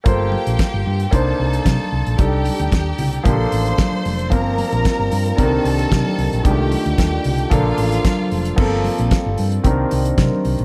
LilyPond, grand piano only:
\new Staff \with { instrumentName = "Grand piano" } { \time 4/4 \key g \minor \tempo 4 = 113 <bes f' a' c''>2 <bes d' ees' c''>2 | <g d' ees' a'>2 <f bes d' g' a'>2 | <f bes c' bes'>2 <d ees c' d' bes'>2 | <ees aes a d' g'>2 <f bes d' a'>2 |
<f bes c' a'>2 <ees c' d' bes'>2 | }